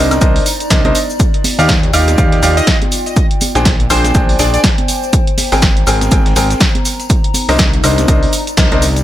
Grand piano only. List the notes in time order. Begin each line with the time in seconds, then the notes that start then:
Already playing: D4 A#4 C5 D#5
0.21 D4 A#4 C5 D#5
0.71 D4 A#4 C5 D#5
0.85 D4 A#4 C5 D#5
1.59 D#4 G4 D5 F5
1.93 D#4 G4 D5 F5
2.18 D#4 G4 D5 F5
2.43 D#4 G4 D5 F5
3.55 D4 G#4 C5 G5
3.90 D4 G#4 C5 G5
4.15 D4 G#4 C5 G5
4.39 D4 G#4 C5 G5
5.52 C4 G#4 A#4 G5
5.87 C4 G#4 A#4 G5
6.12 C4 G#4 A#4 G5
6.36 C4 G#4 A#4 G5
7.49 D4 A#4 C5 D#5
7.84 D4 A#4 C5 D#5
8.08 D4 A#4 C5 D#5
8.57 D4 A#4 C5 D#5
8.72 D4 A#4 C5 D#5